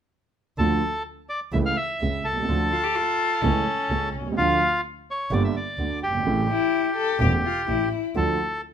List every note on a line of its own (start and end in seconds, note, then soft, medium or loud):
0.58 0.78 D2 medium
0.58 0.79 D2 medium
0.58 0.79 D3 medium
0.58 0.79 F3 soft
0.58 0.79 A3 soft
0.58 0.79 F4 medium
0.58 1.03 A4 medium
1.29 1.40 D5 medium
1.52 1.73 C#2 medium
1.52 1.73 C#3 medium
1.52 1.73 E3 soft
1.52 1.74 A3 soft
1.52 1.74 E4 medium
1.52 1.58 E5 medium
1.66 1.77 F5 medium
1.77 2.26 E5 medium
2.01 2.21 C#2 soft
2.01 2.21 C#3 soft
2.24 2.46 C2 soft
2.24 4.09 A4 medium
2.32 2.37 B1 soft
2.37 2.43 C2 soft
2.43 2.48 C#2 medium
2.47 2.67 D2 medium
2.47 2.68 D2 medium
2.47 2.69 D3 medium
2.47 2.68 F3 soft
2.47 2.69 A3 soft
2.47 2.68 F4 medium
2.72 2.84 F4 medium
2.83 2.97 G4 medium
2.95 3.45 F4 medium
3.42 3.62 C#2 medium
3.42 3.63 C#2 medium
3.42 3.63 C#3 medium
3.42 3.63 E3 soft
3.42 3.63 A3 soft
3.42 4.25 C#4 medium
3.42 3.63 E4 medium
3.89 4.09 C#2 soft
3.89 4.10 C#2 soft
3.89 4.10 C#3 soft
4.14 4.36 C2 soft
4.20 4.26 B1 soft
4.27 4.32 C2 soft
4.32 4.37 C#2 medium
4.36 4.56 D2 medium
4.36 4.58 D2 medium
4.36 4.57 D3 medium
4.36 4.58 F3 soft
4.36 4.57 A3 soft
4.36 4.81 F4 medium
4.36 4.58 F4 medium
5.11 5.33 C#5 medium
5.31 5.51 G1 medium
5.31 5.51 G2 medium
5.31 5.51 D3 medium
5.31 5.51 G3 soft
5.31 5.51 A#3 medium
5.31 5.52 G4 medium
5.31 5.43 D5 medium
5.44 5.56 E5 medium
5.56 6.00 D5 medium
5.78 5.98 D2 soft
5.78 5.99 D2 soft
5.78 5.99 D3 soft
6.02 6.24 G1 soft
6.02 7.89 G4 medium
6.10 6.15 F#1 soft
6.14 6.20 G1 soft
6.20 6.26 G#1 soft
6.25 6.45 A1 medium
6.25 6.46 A1 medium
6.25 6.46 A2 medium
6.25 6.46 C#3 medium
6.25 6.46 E3 soft
6.25 6.46 A3 soft
6.25 6.46 E4 medium
6.50 6.94 E4 medium
6.97 7.19 A4 medium
7.20 7.40 E1 medium
7.20 7.41 E1 medium
7.20 7.41 E2 medium
7.20 7.41 C#3 medium
7.20 7.41 E3 soft
7.20 7.41 A3 soft
7.20 7.41 E4 medium
7.20 7.31 G4 medium
7.45 7.67 F4 medium
7.68 7.88 A1 soft
7.68 7.88 A2 soft
7.68 8.02 E4 medium
8.15 8.36 D2 medium
8.15 8.36 D3 medium
8.15 8.36 F3 soft
8.15 8.36 A3 soft
8.15 8.36 F4 medium
8.15 8.61 A4 medium